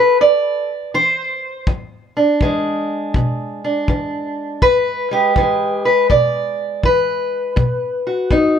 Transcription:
Already playing: E3 A4 B4
0.21 E2 D5
0.94 E3 C5
1.67 E2, kick
2.17 D4
2.41 E3 G#3, kick
3.14 B2, kick
3.64 D4
3.88 E3, kick
4.62 E2 B4, kick
5.11 G#3 G4
5.36 E3 G#3, kick
5.85 B4
6.10 B2 D5, kick
6.83 E3 B4, kick
7.56 B2, kick
8.07 F#4
8.31 B3 D#4, kick

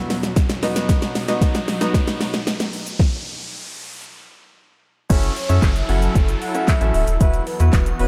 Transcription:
Already playing: E2 B2 F#3 B3 E4 F#4 E5, riser
0.10 snare, open hi-hat, shaker
0.23 snare, closed hi-hat, shaker
0.36 kick, snare, closed hi-hat, shaker
0.49 snare, closed hi-hat, shaker
0.62 F#3 B3 D#4 F#4 D#5, snare, open hi-hat, shaker
0.76 snare, closed hi-hat, shaker
0.89 kick, snare, closed hi-hat, shaker
1.02 snare, closed hi-hat, shaker
1.15 snare, open hi-hat, shaker
1.28 B3 D#4 F#4 D#5, snare, closed hi-hat, shaker
1.41 kick, snare, closed hi-hat, shaker
1.55 snare, closed hi-hat, shaker
1.68 snare, open hi-hat, shaker
1.81 B3 D#4 F#4 D#5, snare, closed hi-hat, shaker
1.94 kick, snare, closed hi-hat, shaker
2.07 snare, closed hi-hat, shaker
2.21 snare, open hi-hat, shaker
2.34 snare, closed hi-hat, shaker
2.47 snare, closed hi-hat, shaker
2.60 snare, closed hi-hat, shaker
2.73 open hi-hat, shaker
2.87 closed hi-hat, shaker
2.99 kick, snare
5.10 F#1 F#3 C#4 E4 F#4 A4 C#5 E5, kick, closed hi-hat, crash, downlifter, shaker
5.23 closed hi-hat, shaker
5.36 C#5, open hi-hat, shaker
5.49 F#2 C#4 E4 F#4 A4 E5, closed hi-hat, shaker
5.62 F#1 E5, kick, snare, clap, closed hi-hat, shaker
5.76 closed hi-hat, shaker
5.89 F#1 C#4 E4 F#4 A4 E5 F#5, open hi-hat, shaker
6.02 closed hi-hat, shaker
6.15 F#1, kick, closed hi-hat, shaker
6.28 closed hi-hat, shaker
6.42 F#5, open hi-hat, shaker
6.55 C#4 E4 F#4 A4 E5, closed hi-hat, shaker
6.68 E5, kick, snare, clap, closed hi-hat, shaker
6.81 A1 C#4 E4 F#4 A4 E5, closed hi-hat, shaker
6.94 D1 E5, open hi-hat, shaker
7.07 D#1, closed hi-hat, shaker
7.20 E1 E3 B3 E4 F#4 B4 E5, kick, closed hi-hat, shaker
7.34 closed hi-hat, shaker
7.47 B4, open hi-hat, shaker
7.60 E2 E4 F#4 B4, closed hi-hat, shaker
7.73 E1 B4, kick, snare, clap, closed hi-hat, shaker
7.86 closed hi-hat, shaker
7.99 E1 E4 F#4 B4 C#5, open hi-hat, shaker

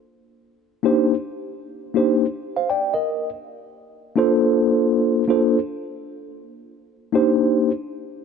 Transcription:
0.83 A#3 D4 D#4 G4 C5
1.94 A#3 D4 D#4 G4 C5
2.56 C5 F5
2.70 D5 G5
2.94 A#4 D#5
4.16 A#3 D4 F4 A4 C5
5.28 A#3 D4 F4 A4 C5
7.12 A#3 D4 D#4 G4 C5

